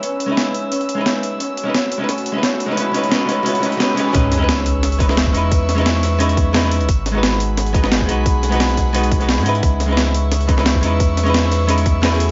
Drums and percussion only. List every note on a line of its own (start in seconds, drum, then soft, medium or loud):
0.03 closed hi-hat medium
0.20 closed hi-hat medium
0.37 snare loud
0.37 closed hi-hat medium
0.55 closed hi-hat medium
0.72 closed hi-hat medium
0.81 closed hi-hat soft
0.89 closed hi-hat medium
1.06 snare loud
1.06 closed hi-hat medium
1.23 closed hi-hat medium
1.40 closed hi-hat loud
1.57 closed hi-hat medium
1.74 snare loud
1.74 closed hi-hat medium
1.92 closed hi-hat medium
2.09 snare soft
2.09 closed hi-hat loud
2.18 closed hi-hat soft
2.26 closed hi-hat medium
2.43 snare loud
2.43 closed hi-hat medium
2.60 closed hi-hat medium
2.77 closed hi-hat loud
2.94 closed hi-hat medium
3.03 closed hi-hat soft
3.12 snare loud
3.12 closed hi-hat loud
3.29 snare soft
3.29 closed hi-hat medium
3.46 closed hi-hat loud
3.55 closed hi-hat soft
3.63 closed hi-hat medium
3.72 closed hi-hat soft
3.80 snare loud
3.80 closed hi-hat loud
3.97 closed hi-hat medium
4.15 kick loud
4.15 closed hi-hat medium
4.32 snare soft
4.32 closed hi-hat medium
4.49 snare loud
4.49 closed hi-hat medium
4.66 closed hi-hat medium
4.83 snare medium
4.83 closed hi-hat loud
4.83 closed hi-hat medium
4.92 closed hi-hat soft
5.00 kick loud
5.00 closed hi-hat medium
5.09 snare medium
5.17 snare loud
5.17 closed hi-hat medium
5.26 kick medium
5.34 closed hi-hat medium
5.52 kick loud
5.52 closed hi-hat medium
5.69 snare soft
5.69 closed hi-hat medium
5.78 closed hi-hat soft
5.86 snare loud
5.86 closed hi-hat medium
6.03 snare soft
6.03 closed hi-hat medium
6.20 closed hi-hat medium
6.29 closed hi-hat soft
6.37 kick loud
6.37 closed hi-hat medium
6.54 snare loud
6.54 closed hi-hat medium
6.54 open hi-hat medium
6.63 snare medium
6.71 closed hi-hat medium
6.81 closed hi-hat soft
6.89 kick loud
6.89 closed hi-hat medium
7.06 snare soft
7.06 closed hi-hat medium
7.23 snare loud
7.23 closed hi-hat medium
7.40 closed hi-hat medium
7.57 snare soft
7.57 closed hi-hat medium
7.66 closed hi-hat soft
7.74 kick loud
7.74 closed hi-hat medium
7.84 snare medium
7.92 snare loud
7.92 closed hi-hat medium
8.01 kick medium
8.09 closed hi-hat medium
8.26 kick loud
8.26 closed hi-hat medium
8.43 snare soft
8.43 closed hi-hat medium
8.52 closed hi-hat soft
8.60 snare loud
8.60 closed hi-hat medium
8.69 closed hi-hat soft
8.77 kick medium
8.77 snare soft
8.77 closed hi-hat medium
8.94 closed hi-hat medium
9.03 closed hi-hat soft
9.12 kick loud
9.12 closed hi-hat medium
9.21 closed hi-hat soft
9.29 snare loud
9.29 closed hi-hat medium
9.29 open hi-hat medium
9.38 snare medium
9.46 closed hi-hat medium
9.55 closed hi-hat soft
9.63 kick loud
9.63 closed hi-hat medium
9.80 snare soft
9.80 closed hi-hat medium
9.97 snare loud
9.97 closed hi-hat medium
10.14 closed hi-hat medium
10.32 snare soft
10.32 closed hi-hat medium
10.41 closed hi-hat soft
10.49 kick loud
10.49 closed hi-hat medium
10.58 snare medium
10.66 snare loud
10.66 closed hi-hat medium
10.75 kick medium
10.83 closed hi-hat medium
11.00 kick loud
11.00 closed hi-hat medium
11.17 snare soft
11.17 closed hi-hat medium
11.27 closed hi-hat soft
11.34 snare loud
11.34 closed hi-hat medium
11.51 snare soft
11.51 closed hi-hat medium
11.69 closed hi-hat loud
11.69 closed hi-hat medium
11.78 closed hi-hat soft
11.86 kick loud
11.86 closed hi-hat medium
12.03 snare loud
12.03 closed hi-hat medium
12.03 open hi-hat medium
12.12 snare medium
12.20 closed hi-hat medium